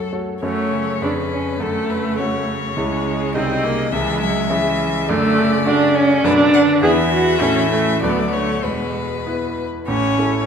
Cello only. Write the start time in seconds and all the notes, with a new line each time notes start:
0.42 F#3
0.71 C#3
1.60 D3
1.89 C#3
3.92 E3
4.20 F#3
4.50 E3
5.09 D3
5.37 C#3
6.24 B2
6.54 D3
6.83 E3
7.42 E3
8.01 F#3
8.32 D3
8.63 B2
9.88 C#4